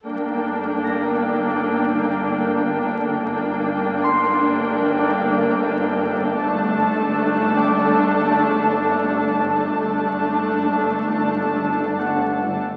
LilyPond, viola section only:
\new Staff \with { instrumentName = "Viola section" } { \time 4/4 \key g \minor \tempo 4 = 76 <bes d'>1 | <bes d'>1 | <a d'>1 | <a d'>2.~ <a d'>8. r16 | }